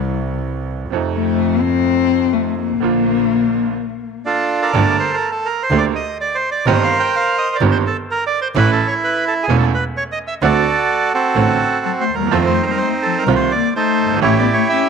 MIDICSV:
0, 0, Header, 1, 5, 480
1, 0, Start_track
1, 0, Key_signature, -2, "major"
1, 0, Tempo, 471328
1, 937, Time_signature, 4, 2, 24, 8
1, 3341, Tempo, 484262
1, 4792, Key_signature, -2, "minor"
1, 6701, Tempo, 469484
1, 11501, Tempo, 475813
1, 15059, End_track
2, 0, Start_track
2, 0, Title_t, "Bandoneon"
2, 0, Program_c, 0, 23
2, 4306, Note_on_c, 0, 62, 56
2, 4312, Note_on_c, 0, 65, 55
2, 4317, Note_on_c, 0, 69, 78
2, 4652, Note_off_c, 0, 69, 0
2, 4669, Note_on_c, 0, 69, 57
2, 4674, Note_on_c, 0, 70, 60
2, 4677, Note_on_c, 0, 74, 82
2, 4759, Note_off_c, 0, 62, 0
2, 4762, Note_off_c, 0, 65, 0
2, 5012, Note_off_c, 0, 74, 0
2, 5043, Note_on_c, 0, 72, 81
2, 5165, Note_off_c, 0, 70, 0
2, 5180, Note_on_c, 0, 70, 83
2, 5203, Note_off_c, 0, 72, 0
2, 5338, Note_off_c, 0, 69, 0
2, 5351, Note_off_c, 0, 70, 0
2, 5353, Note_on_c, 0, 69, 78
2, 5498, Note_on_c, 0, 70, 87
2, 5517, Note_off_c, 0, 69, 0
2, 5668, Note_on_c, 0, 72, 87
2, 5669, Note_off_c, 0, 70, 0
2, 5820, Note_on_c, 0, 74, 86
2, 5833, Note_off_c, 0, 72, 0
2, 5893, Note_off_c, 0, 74, 0
2, 5993, Note_on_c, 0, 75, 85
2, 6212, Note_off_c, 0, 75, 0
2, 6244, Note_on_c, 0, 74, 91
2, 6383, Note_on_c, 0, 72, 95
2, 6398, Note_off_c, 0, 74, 0
2, 6531, Note_off_c, 0, 72, 0
2, 6546, Note_on_c, 0, 74, 93
2, 6691, Note_off_c, 0, 74, 0
2, 6699, Note_on_c, 0, 70, 81
2, 6702, Note_on_c, 0, 72, 74
2, 6704, Note_on_c, 0, 75, 95
2, 6869, Note_off_c, 0, 75, 0
2, 6872, Note_on_c, 0, 77, 96
2, 7017, Note_off_c, 0, 77, 0
2, 7036, Note_on_c, 0, 79, 101
2, 7194, Note_off_c, 0, 79, 0
2, 7199, Note_on_c, 0, 77, 101
2, 7415, Note_off_c, 0, 77, 0
2, 7428, Note_on_c, 0, 75, 101
2, 7590, Note_off_c, 0, 75, 0
2, 7604, Note_on_c, 0, 74, 99
2, 7621, Note_off_c, 0, 70, 0
2, 7623, Note_off_c, 0, 72, 0
2, 7671, Note_off_c, 0, 74, 0
2, 7767, Note_on_c, 0, 72, 96
2, 7834, Note_off_c, 0, 72, 0
2, 7926, Note_on_c, 0, 69, 93
2, 8030, Note_off_c, 0, 69, 0
2, 8174, Note_on_c, 0, 70, 98
2, 8310, Note_off_c, 0, 70, 0
2, 8332, Note_on_c, 0, 74, 97
2, 8468, Note_off_c, 0, 74, 0
2, 8484, Note_on_c, 0, 72, 96
2, 8551, Note_off_c, 0, 72, 0
2, 8648, Note_on_c, 0, 71, 107
2, 8652, Note_on_c, 0, 64, 79
2, 8785, Note_off_c, 0, 71, 0
2, 8800, Note_on_c, 0, 69, 97
2, 8954, Note_on_c, 0, 73, 95
2, 8955, Note_off_c, 0, 69, 0
2, 9022, Note_off_c, 0, 73, 0
2, 9124, Note_on_c, 0, 71, 97
2, 9335, Note_off_c, 0, 71, 0
2, 9366, Note_on_c, 0, 69, 96
2, 9432, Note_off_c, 0, 69, 0
2, 9524, Note_on_c, 0, 68, 92
2, 9551, Note_off_c, 0, 64, 0
2, 9661, Note_off_c, 0, 68, 0
2, 9683, Note_on_c, 0, 69, 84
2, 9749, Note_off_c, 0, 69, 0
2, 9843, Note_on_c, 0, 71, 91
2, 9944, Note_off_c, 0, 71, 0
2, 10075, Note_on_c, 0, 73, 98
2, 10143, Note_off_c, 0, 73, 0
2, 10228, Note_on_c, 0, 75, 93
2, 10297, Note_off_c, 0, 75, 0
2, 10386, Note_on_c, 0, 76, 89
2, 10456, Note_off_c, 0, 76, 0
2, 10550, Note_on_c, 0, 74, 101
2, 10555, Note_on_c, 0, 66, 71
2, 10555, Note_on_c, 0, 69, 74
2, 11224, Note_off_c, 0, 74, 0
2, 11258, Note_off_c, 0, 66, 0
2, 11259, Note_off_c, 0, 69, 0
2, 11273, Note_on_c, 0, 66, 64
2, 11274, Note_on_c, 0, 69, 96
2, 11277, Note_on_c, 0, 60, 73
2, 11979, Note_off_c, 0, 69, 0
2, 11994, Note_on_c, 0, 69, 79
2, 12062, Note_off_c, 0, 69, 0
2, 12147, Note_on_c, 0, 72, 85
2, 12185, Note_off_c, 0, 66, 0
2, 12187, Note_off_c, 0, 60, 0
2, 12290, Note_on_c, 0, 70, 75
2, 12293, Note_off_c, 0, 72, 0
2, 12455, Note_on_c, 0, 69, 84
2, 12462, Note_off_c, 0, 70, 0
2, 12464, Note_on_c, 0, 60, 63
2, 12464, Note_on_c, 0, 63, 65
2, 12530, Note_off_c, 0, 69, 0
2, 12609, Note_on_c, 0, 72, 82
2, 12767, Note_off_c, 0, 72, 0
2, 12776, Note_on_c, 0, 70, 76
2, 12796, Note_off_c, 0, 70, 0
2, 12810, Note_on_c, 0, 72, 72
2, 12850, Note_on_c, 0, 70, 76
2, 12859, Note_off_c, 0, 72, 0
2, 12922, Note_on_c, 0, 72, 82
2, 12933, Note_off_c, 0, 70, 0
2, 13037, Note_off_c, 0, 72, 0
2, 13174, Note_on_c, 0, 69, 81
2, 13332, Note_off_c, 0, 69, 0
2, 13336, Note_on_c, 0, 70, 82
2, 13393, Note_off_c, 0, 60, 0
2, 13393, Note_off_c, 0, 63, 0
2, 13494, Note_off_c, 0, 70, 0
2, 13509, Note_on_c, 0, 72, 81
2, 13665, Note_on_c, 0, 74, 90
2, 13677, Note_off_c, 0, 72, 0
2, 13892, Note_off_c, 0, 74, 0
2, 13917, Note_on_c, 0, 72, 86
2, 13922, Note_on_c, 0, 63, 65
2, 13923, Note_on_c, 0, 69, 66
2, 14357, Note_off_c, 0, 72, 0
2, 14360, Note_off_c, 0, 63, 0
2, 14360, Note_off_c, 0, 69, 0
2, 14383, Note_on_c, 0, 73, 93
2, 14390, Note_on_c, 0, 67, 67
2, 14394, Note_on_c, 0, 64, 67
2, 14548, Note_off_c, 0, 73, 0
2, 14550, Note_on_c, 0, 74, 86
2, 14695, Note_off_c, 0, 74, 0
2, 14698, Note_on_c, 0, 73, 89
2, 14848, Note_off_c, 0, 73, 0
2, 14857, Note_on_c, 0, 76, 94
2, 15059, Note_off_c, 0, 64, 0
2, 15059, Note_off_c, 0, 67, 0
2, 15059, Note_off_c, 0, 76, 0
2, 15059, End_track
3, 0, Start_track
3, 0, Title_t, "Cello"
3, 0, Program_c, 1, 42
3, 0, Note_on_c, 1, 55, 75
3, 228, Note_off_c, 1, 55, 0
3, 1166, Note_on_c, 1, 57, 93
3, 1638, Note_on_c, 1, 60, 112
3, 1653, Note_off_c, 1, 57, 0
3, 2369, Note_on_c, 1, 57, 87
3, 2385, Note_off_c, 1, 60, 0
3, 2600, Note_on_c, 1, 58, 98
3, 2616, Note_off_c, 1, 57, 0
3, 4296, Note_off_c, 1, 58, 0
3, 11979, Note_on_c, 1, 54, 67
3, 12051, Note_off_c, 1, 54, 0
3, 12142, Note_on_c, 1, 57, 64
3, 12290, Note_off_c, 1, 57, 0
3, 12299, Note_on_c, 1, 55, 73
3, 12450, Note_off_c, 1, 55, 0
3, 12459, Note_on_c, 1, 53, 74
3, 12533, Note_off_c, 1, 53, 0
3, 12631, Note_on_c, 1, 57, 68
3, 12779, Note_off_c, 1, 57, 0
3, 12805, Note_on_c, 1, 55, 70
3, 12819, Note_off_c, 1, 55, 0
3, 12844, Note_on_c, 1, 57, 59
3, 12874, Note_off_c, 1, 57, 0
3, 12882, Note_on_c, 1, 55, 70
3, 12950, Note_off_c, 1, 55, 0
3, 12963, Note_on_c, 1, 57, 75
3, 13068, Note_off_c, 1, 57, 0
3, 13204, Note_on_c, 1, 53, 72
3, 13348, Note_off_c, 1, 53, 0
3, 13366, Note_on_c, 1, 55, 73
3, 13504, Note_off_c, 1, 55, 0
3, 13510, Note_on_c, 1, 57, 68
3, 13661, Note_off_c, 1, 57, 0
3, 13683, Note_on_c, 1, 58, 75
3, 13902, Note_off_c, 1, 58, 0
3, 13926, Note_on_c, 1, 57, 76
3, 14362, Note_off_c, 1, 57, 0
3, 14406, Note_on_c, 1, 57, 83
3, 14544, Note_off_c, 1, 57, 0
3, 14558, Note_on_c, 1, 59, 79
3, 14699, Note_off_c, 1, 59, 0
3, 14714, Note_on_c, 1, 57, 75
3, 14856, Note_off_c, 1, 57, 0
3, 14872, Note_on_c, 1, 61, 79
3, 15059, Note_off_c, 1, 61, 0
3, 15059, End_track
4, 0, Start_track
4, 0, Title_t, "Grand piano"
4, 0, Program_c, 2, 0
4, 0, Note_on_c, 2, 36, 66
4, 0, Note_on_c, 2, 48, 64
4, 0, Note_on_c, 2, 52, 48
4, 0, Note_on_c, 2, 55, 49
4, 0, Note_on_c, 2, 64, 59
4, 836, Note_off_c, 2, 52, 0
4, 840, Note_off_c, 2, 36, 0
4, 840, Note_off_c, 2, 48, 0
4, 844, Note_off_c, 2, 55, 0
4, 850, Note_off_c, 2, 64, 0
4, 920, Note_on_c, 2, 48, 54
4, 938, Note_on_c, 2, 53, 64
4, 946, Note_on_c, 2, 41, 72
4, 954, Note_on_c, 2, 57, 50
4, 964, Note_on_c, 2, 63, 63
4, 2753, Note_off_c, 2, 48, 0
4, 2764, Note_off_c, 2, 53, 0
4, 2766, Note_off_c, 2, 41, 0
4, 2770, Note_off_c, 2, 57, 0
4, 2775, Note_off_c, 2, 63, 0
4, 2855, Note_on_c, 2, 50, 55
4, 2867, Note_on_c, 2, 53, 50
4, 2872, Note_on_c, 2, 34, 67
4, 2873, Note_on_c, 2, 46, 65
4, 2877, Note_on_c, 2, 58, 54
4, 2893, Note_on_c, 2, 65, 60
4, 3769, Note_off_c, 2, 50, 0
4, 3775, Note_off_c, 2, 53, 0
4, 3778, Note_off_c, 2, 34, 0
4, 3778, Note_off_c, 2, 46, 0
4, 3780, Note_off_c, 2, 58, 0
4, 3788, Note_off_c, 2, 65, 0
4, 4787, Note_on_c, 2, 50, 75
4, 4791, Note_on_c, 2, 43, 83
4, 4794, Note_on_c, 2, 31, 89
4, 4794, Note_on_c, 2, 57, 67
4, 4796, Note_on_c, 2, 58, 67
4, 4796, Note_on_c, 2, 67, 80
4, 4993, Note_off_c, 2, 50, 0
4, 4995, Note_off_c, 2, 43, 0
4, 4996, Note_off_c, 2, 31, 0
4, 4997, Note_off_c, 2, 57, 0
4, 4997, Note_off_c, 2, 67, 0
4, 4998, Note_off_c, 2, 58, 0
4, 5756, Note_on_c, 2, 57, 64
4, 5757, Note_on_c, 2, 50, 81
4, 5758, Note_on_c, 2, 58, 60
4, 5759, Note_on_c, 2, 38, 81
4, 5760, Note_on_c, 2, 67, 73
4, 5953, Note_off_c, 2, 57, 0
4, 5954, Note_off_c, 2, 50, 0
4, 5954, Note_off_c, 2, 58, 0
4, 5955, Note_off_c, 2, 38, 0
4, 5955, Note_off_c, 2, 67, 0
4, 6698, Note_on_c, 2, 51, 83
4, 6698, Note_on_c, 2, 58, 71
4, 6699, Note_on_c, 2, 43, 91
4, 6703, Note_on_c, 2, 60, 75
4, 6705, Note_on_c, 2, 31, 97
4, 6707, Note_on_c, 2, 67, 87
4, 6903, Note_off_c, 2, 43, 0
4, 6903, Note_off_c, 2, 51, 0
4, 6903, Note_off_c, 2, 58, 0
4, 6905, Note_off_c, 2, 60, 0
4, 6906, Note_off_c, 2, 31, 0
4, 6908, Note_off_c, 2, 67, 0
4, 7659, Note_on_c, 2, 51, 72
4, 7665, Note_on_c, 2, 43, 84
4, 7665, Note_on_c, 2, 58, 65
4, 7665, Note_on_c, 2, 60, 68
4, 7667, Note_on_c, 2, 67, 76
4, 7670, Note_on_c, 2, 31, 89
4, 7863, Note_off_c, 2, 51, 0
4, 7866, Note_off_c, 2, 43, 0
4, 7866, Note_off_c, 2, 58, 0
4, 7866, Note_off_c, 2, 60, 0
4, 7867, Note_off_c, 2, 67, 0
4, 7868, Note_off_c, 2, 31, 0
4, 8626, Note_on_c, 2, 52, 80
4, 8632, Note_on_c, 2, 57, 76
4, 8633, Note_on_c, 2, 45, 96
4, 8634, Note_on_c, 2, 69, 88
4, 8636, Note_on_c, 2, 33, 94
4, 8639, Note_on_c, 2, 61, 72
4, 8825, Note_off_c, 2, 52, 0
4, 8828, Note_off_c, 2, 57, 0
4, 8829, Note_off_c, 2, 45, 0
4, 8829, Note_off_c, 2, 69, 0
4, 8830, Note_off_c, 2, 33, 0
4, 8832, Note_off_c, 2, 61, 0
4, 9582, Note_on_c, 2, 52, 74
4, 9586, Note_on_c, 2, 28, 88
4, 9587, Note_on_c, 2, 57, 73
4, 9588, Note_on_c, 2, 40, 90
4, 9589, Note_on_c, 2, 69, 81
4, 9593, Note_on_c, 2, 61, 66
4, 9781, Note_off_c, 2, 52, 0
4, 9783, Note_off_c, 2, 28, 0
4, 9784, Note_off_c, 2, 40, 0
4, 9784, Note_off_c, 2, 57, 0
4, 9785, Note_off_c, 2, 69, 0
4, 9787, Note_off_c, 2, 61, 0
4, 10534, Note_on_c, 2, 50, 89
4, 10540, Note_on_c, 2, 57, 75
4, 10540, Note_on_c, 2, 66, 89
4, 10542, Note_on_c, 2, 38, 88
4, 10542, Note_on_c, 2, 60, 72
4, 10738, Note_off_c, 2, 50, 0
4, 10741, Note_off_c, 2, 38, 0
4, 10741, Note_off_c, 2, 57, 0
4, 10741, Note_off_c, 2, 60, 0
4, 10741, Note_off_c, 2, 66, 0
4, 11494, Note_on_c, 2, 33, 76
4, 11494, Note_on_c, 2, 50, 66
4, 11495, Note_on_c, 2, 57, 62
4, 11496, Note_on_c, 2, 60, 62
4, 11497, Note_on_c, 2, 45, 78
4, 11502, Note_on_c, 2, 66, 74
4, 11696, Note_off_c, 2, 33, 0
4, 11696, Note_off_c, 2, 50, 0
4, 11697, Note_off_c, 2, 57, 0
4, 11697, Note_off_c, 2, 60, 0
4, 11698, Note_off_c, 2, 45, 0
4, 11700, Note_off_c, 2, 66, 0
4, 12289, Note_on_c, 2, 38, 46
4, 12345, Note_off_c, 2, 38, 0
4, 12351, Note_on_c, 2, 39, 61
4, 12406, Note_off_c, 2, 39, 0
4, 12411, Note_on_c, 2, 40, 73
4, 12458, Note_on_c, 2, 51, 75
4, 12459, Note_on_c, 2, 41, 81
4, 12461, Note_on_c, 2, 53, 91
4, 12462, Note_on_c, 2, 57, 68
4, 12463, Note_on_c, 2, 60, 64
4, 12466, Note_on_c, 2, 65, 80
4, 12467, Note_off_c, 2, 40, 0
4, 12665, Note_off_c, 2, 51, 0
4, 12666, Note_off_c, 2, 41, 0
4, 12667, Note_off_c, 2, 53, 0
4, 12667, Note_off_c, 2, 57, 0
4, 12668, Note_off_c, 2, 60, 0
4, 12669, Note_off_c, 2, 65, 0
4, 13431, Note_on_c, 2, 51, 71
4, 13433, Note_on_c, 2, 36, 75
4, 13434, Note_on_c, 2, 65, 77
4, 13435, Note_on_c, 2, 48, 83
4, 13436, Note_on_c, 2, 57, 67
4, 13436, Note_on_c, 2, 60, 66
4, 13635, Note_off_c, 2, 51, 0
4, 13636, Note_off_c, 2, 36, 0
4, 13637, Note_off_c, 2, 48, 0
4, 13637, Note_off_c, 2, 57, 0
4, 13637, Note_off_c, 2, 65, 0
4, 13638, Note_off_c, 2, 60, 0
4, 14214, Note_on_c, 2, 30, 48
4, 14265, Note_on_c, 2, 31, 64
4, 14272, Note_off_c, 2, 30, 0
4, 14322, Note_on_c, 2, 32, 76
4, 14327, Note_off_c, 2, 31, 0
4, 14376, Note_on_c, 2, 52, 79
4, 14380, Note_on_c, 2, 67, 89
4, 14381, Note_on_c, 2, 33, 86
4, 14382, Note_on_c, 2, 57, 68
4, 14383, Note_on_c, 2, 61, 71
4, 14384, Note_on_c, 2, 45, 91
4, 14385, Note_off_c, 2, 32, 0
4, 14581, Note_off_c, 2, 52, 0
4, 14583, Note_off_c, 2, 33, 0
4, 14583, Note_off_c, 2, 67, 0
4, 14584, Note_off_c, 2, 57, 0
4, 14584, Note_off_c, 2, 61, 0
4, 14585, Note_off_c, 2, 45, 0
4, 15059, End_track
5, 0, Start_track
5, 0, Title_t, "Double bass"
5, 0, Program_c, 3, 43
5, 0, Note_on_c, 3, 36, 76
5, 837, Note_off_c, 3, 36, 0
5, 933, Note_on_c, 3, 41, 77
5, 2760, Note_off_c, 3, 41, 0
5, 2849, Note_on_c, 3, 34, 68
5, 3767, Note_off_c, 3, 34, 0
5, 4789, Note_on_c, 3, 31, 89
5, 4994, Note_off_c, 3, 31, 0
5, 5742, Note_on_c, 3, 38, 102
5, 5946, Note_off_c, 3, 38, 0
5, 6693, Note_on_c, 3, 31, 98
5, 6900, Note_off_c, 3, 31, 0
5, 7662, Note_on_c, 3, 31, 107
5, 7864, Note_off_c, 3, 31, 0
5, 8628, Note_on_c, 3, 33, 104
5, 8826, Note_off_c, 3, 33, 0
5, 9580, Note_on_c, 3, 28, 107
5, 9780, Note_off_c, 3, 28, 0
5, 10536, Note_on_c, 3, 38, 96
5, 10738, Note_off_c, 3, 38, 0
5, 11491, Note_on_c, 3, 33, 96
5, 11695, Note_off_c, 3, 33, 0
5, 12219, Note_on_c, 3, 39, 52
5, 12460, Note_off_c, 3, 39, 0
5, 12467, Note_on_c, 3, 41, 88
5, 12669, Note_off_c, 3, 41, 0
5, 13423, Note_on_c, 3, 36, 94
5, 13631, Note_off_c, 3, 36, 0
5, 14151, Note_on_c, 3, 31, 56
5, 14374, Note_off_c, 3, 31, 0
5, 14381, Note_on_c, 3, 33, 91
5, 14583, Note_off_c, 3, 33, 0
5, 15059, End_track
0, 0, End_of_file